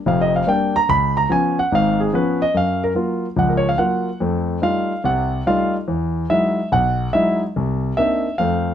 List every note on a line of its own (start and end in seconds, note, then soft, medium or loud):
0.06 0.42 F1 medium
0.06 0.42 F2 medium
0.06 0.20 F5 medium
0.21 0.33 D#5 medium
0.36 0.48 F5 medium
0.47 0.76 G3 medium
0.47 0.76 A#3 medium
0.47 0.76 D4 medium
0.47 0.74 G5 medium
0.76 0.89 A#5 loud
0.89 1.25 C#2 medium
0.89 1.15 B5 loud
1.17 1.30 A#5 medium
1.29 1.58 F3 medium
1.29 1.59 B3 medium
1.29 1.59 C#4 medium
1.29 1.57 G#5 medium
1.59 1.72 F#5 medium
1.72 2.08 G#1 medium
1.72 2.08 G#2 medium
1.72 2.00 F5 medium
2.00 2.13 G#4 medium
2.13 2.42 F3 medium
2.13 2.42 B3 medium
2.13 2.42 C#4 medium
2.13 2.41 B4 medium
2.42 2.55 D#5 medium
2.54 2.90 F#2 medium
2.54 2.83 F5 medium
2.84 2.92 A#4 medium
2.95 3.24 F#3 soft
2.95 3.25 A#3 soft
2.95 3.25 F4 medium
3.36 3.73 C#2 medium
3.36 3.73 F3 medium
3.36 3.52 F#5 medium
3.49 3.64 A#4 medium
3.57 3.68 C#5 medium
3.69 3.77 F5 medium
3.78 4.08 F#3 medium
3.78 4.08 A#3 soft
3.78 4.08 F4 medium
3.78 4.17 F#5 medium
4.20 4.57 F2 medium
4.20 4.57 A3 medium
4.62 4.91 G3 medium
4.62 4.91 A3 soft
4.62 4.91 D#4 soft
4.62 4.92 F4 medium
4.62 5.02 F5 medium
5.04 5.40 C2 medium
5.04 5.40 C3 medium
5.04 5.43 F#5 medium
5.46 5.75 G3 medium
5.46 5.75 A3 medium
5.46 5.76 D#4 medium
5.46 5.75 F4 medium
5.46 5.73 F5 medium
5.88 6.24 E2 medium
6.30 6.58 F#3 medium
6.30 6.58 G#3 soft
6.30 6.58 D#4 soft
6.30 6.58 E4 medium
6.30 6.68 E5 medium
6.72 7.07 B1 medium
6.72 7.10 F#5 medium
7.13 7.42 F#3 medium
7.13 7.42 G#3 soft
7.13 7.42 D#4 soft
7.13 7.42 E4 medium
7.13 7.39 E5 medium
7.56 7.91 C2 medium
7.97 8.25 A#3 medium
7.97 8.26 C4 soft
7.97 8.26 D4 soft
7.97 8.26 D#4 medium
7.97 8.35 E5 medium
8.38 8.74 F2 medium
8.38 8.74 A3 medium
8.38 8.74 F5 medium